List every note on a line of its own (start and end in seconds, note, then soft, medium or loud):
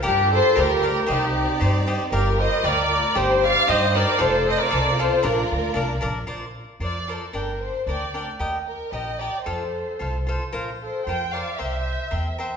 0.03 0.39 G2 loud
0.03 1.08 G3 medium
0.03 0.33 D4 medium
0.03 1.07 F4 medium
0.03 0.20 G4 medium
0.03 0.30 G4 loud
0.03 0.20 A#4 medium
0.03 1.07 A#4 medium
0.03 0.20 D5 medium
0.03 0.20 F5 medium
0.32 0.61 A4 loud
0.32 0.58 C5 loud
0.55 0.90 D2 loud
0.55 0.72 G4 medium
0.55 0.72 A#4 medium
0.55 0.73 D5 medium
0.55 0.73 F5 medium
0.60 1.14 G4 loud
0.60 1.10 A#4 loud
0.82 0.98 G4 medium
0.82 0.98 A#4 medium
0.82 0.99 D5 medium
0.82 0.98 F5 medium
1.06 1.43 C2 medium
1.06 2.11 C4 medium
1.06 2.11 D#4 medium
1.06 1.23 G4 medium
1.06 1.24 C5 medium
1.06 2.11 D5 medium
1.06 1.24 D5 medium
1.06 1.24 D#5 medium
1.11 1.89 D#4 medium
1.11 1.89 G4 medium
1.60 1.95 G2 medium
1.60 1.76 G4 medium
1.60 1.77 C5 medium
1.60 1.77 D5 medium
1.60 1.77 D#5 medium
1.87 2.02 G4 medium
1.87 2.03 C5 medium
1.87 2.03 D5 medium
1.87 2.03 D#5 medium
2.12 2.46 G1 medium
2.12 3.15 G3 medium
2.12 3.16 F4 medium
2.12 2.29 G4 medium
2.12 2.41 G4 medium
2.12 2.29 A#4 medium
2.12 2.38 A#4 medium
2.12 3.16 A#4 medium
2.12 2.29 D5 medium
2.12 2.29 F5 medium
2.39 2.68 C5 medium
2.39 2.65 D#5 loud
2.63 2.98 D2 medium
2.63 2.81 G4 medium
2.63 2.81 A#4 medium
2.63 3.18 A#4 medium
2.63 3.17 D5 loud
2.63 2.81 D5 medium
2.63 2.81 F5 medium
3.15 3.50 G1 medium
3.15 4.19 G3 medium
3.15 3.32 D#4 medium
3.15 4.20 D#4 medium
3.15 3.32 G4 medium
3.15 3.47 G4 loud
3.15 3.33 C5 medium
3.15 5.23 C5 loud
3.15 3.44 C5 loud
3.15 3.33 D#5 medium
3.45 3.70 D5 medium
3.45 3.69 F5 loud
3.67 4.02 G2 loud
3.67 3.84 D#4 medium
3.67 3.85 G4 medium
3.67 3.97 C5 loud
3.67 3.85 C5 medium
3.67 3.85 D#5 medium
3.67 3.96 D#5 loud
3.94 4.10 D#4 medium
3.94 4.10 G4 medium
3.94 4.22 A#4 medium
3.94 4.11 C5 medium
3.94 4.21 D5 loud
3.94 4.11 D#5 medium
4.18 4.54 F1 medium
4.18 5.23 C4 medium
4.18 4.36 F4 medium
4.18 6.27 F4 medium
4.18 4.36 A4 medium
4.18 4.47 A4 loud
4.18 4.36 C5 medium
4.18 4.48 C5 loud
4.18 4.36 F5 medium
4.49 4.61 C5 medium
4.49 4.60 D#5 loud
4.59 5.01 A#4 medium
4.59 4.99 D5 loud
4.70 5.07 C2 medium
4.70 4.88 F4 medium
4.70 4.88 A4 medium
4.70 4.88 C5 medium
4.70 4.89 F5 medium
4.99 5.14 F4 medium
4.99 5.27 A4 medium
4.99 5.14 A4 medium
4.99 5.15 C5 medium
4.99 5.25 C5 loud
4.99 5.15 F5 medium
5.23 5.42 A#1 medium
5.23 6.28 A#3 medium
5.23 5.40 D4 medium
5.23 6.04 F4 medium
5.23 5.40 A#4 medium
5.23 6.04 A#4 medium
5.23 5.40 D5 medium
5.23 6.28 D5 medium
5.23 5.40 F5 medium
5.52 5.74 D2 medium
5.74 6.01 C2 medium
5.74 5.92 D4 medium
5.74 5.92 A#4 medium
5.74 5.92 D5 medium
5.74 5.93 F5 medium
6.01 6.27 A#1 medium
6.01 6.18 D4 medium
6.01 6.18 A#4 medium
6.01 6.18 D5 medium
6.01 6.18 F5 medium
6.27 6.63 A#1 medium
6.27 6.45 F4 medium
6.27 6.45 A#4 medium
6.27 6.45 C5 medium
6.27 6.45 D5 medium
6.80 7.15 F2 medium
6.80 6.98 F4 soft
6.80 6.98 A#4 soft
6.80 6.98 C5 soft
6.80 6.99 D5 medium
6.85 7.09 D5 medium
7.08 7.24 F4 soft
7.08 7.36 A4 medium
7.08 7.25 A#4 soft
7.08 7.25 C5 soft
7.08 7.25 D5 soft
7.33 7.68 G1 medium
7.33 7.51 D4 medium
7.33 7.51 A#4 medium
7.33 7.63 A#4 medium
7.33 7.51 D5 medium
7.33 7.51 G5 medium
7.62 7.88 C5 medium
7.86 8.21 D2 medium
7.86 8.04 D4 soft
7.86 8.05 A#4 soft
7.86 8.25 D5 medium
7.86 8.05 D5 soft
7.86 8.05 G5 medium
8.14 8.30 D4 soft
8.14 8.30 A#4 soft
8.14 8.30 D5 soft
8.14 8.30 G5 medium
8.39 8.74 D#2 medium
8.39 8.56 G4 medium
8.39 8.57 A#4 medium
8.39 8.57 D#5 medium
8.39 8.57 G5 medium
8.67 8.91 A#4 medium
8.91 9.27 A#1 medium
8.91 9.09 G4 soft
8.91 9.10 A#4 soft
8.91 9.20 D#5 medium
8.91 9.10 D#5 soft
8.91 9.10 G5 soft
9.19 9.35 G4 soft
9.19 9.36 A#4 soft
9.19 9.45 D5 medium
9.19 9.36 D#5 medium
9.19 9.36 G5 medium
9.43 9.81 F2 medium
9.43 9.63 F4 medium
9.43 10.22 A4 medium
9.43 9.62 A4 medium
9.43 10.21 C5 medium
9.43 9.63 C5 soft
9.43 9.63 F5 medium
9.99 10.35 C2 medium
9.99 10.16 F4 soft
9.99 10.16 A4 soft
9.99 10.17 C5 soft
9.99 10.17 F5 soft
10.27 10.42 F4 soft
10.27 10.43 A4 soft
10.27 10.43 C5 medium
10.27 10.43 F5 medium
10.52 10.88 A#1 medium
10.52 10.69 F4 medium
10.52 10.69 A#4 medium
10.52 10.69 C5 medium
10.52 10.70 F5 medium
10.81 11.05 A4 medium
10.81 11.04 C5 medium
11.05 11.41 F2 medium
11.05 11.23 F4 soft
11.05 11.24 A#4 soft
11.05 11.35 C5 medium
11.05 11.23 F5 soft
11.05 11.31 G5 medium
11.09 11.24 C5 medium
11.32 11.49 F4 soft
11.32 11.49 A#4 soft
11.32 11.50 C5 soft
11.32 11.61 D5 medium
11.32 11.58 F5 medium
11.32 11.50 F5 medium
11.57 11.94 C2 medium
11.57 11.75 A#4 medium
11.57 11.75 C5 medium
11.57 12.39 C5 medium
11.57 12.38 E5 medium
11.57 11.75 E5 medium
11.57 11.75 G5 medium
12.11 12.46 E2 medium
12.11 12.27 A#4 soft
12.11 12.27 C5 soft
12.11 12.28 E5 soft
12.11 12.28 G5 soft
12.38 12.54 A#4 medium
12.38 12.54 C5 medium
12.38 12.54 E5 medium
12.38 12.54 G5 medium